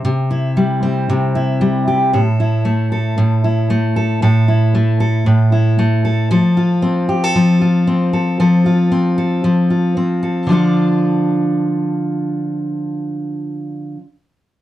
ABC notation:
X:1
M:4/4
L:1/16
Q:"Swing 16ths" 1/4=115
K:Dm
V:1 name="Steel-string acoustic guitar"
C,2 E2 G,2 C2 C,2 E2 G,2 G2 | [A,,A]2 E2 A,2 A2 A,,2 E2 A,2 A2 | [A,,A]2 E2 A,2 A2 A,,2 E2 A,2 A2 | [F,A]2 F2 C2 G A F,2 F2 C2 A2 |
[F,A]2 F2 C2 A2 F,2 F2 C2 A2 | [D,F,DFA]16- | [D,F,DFA]16 |]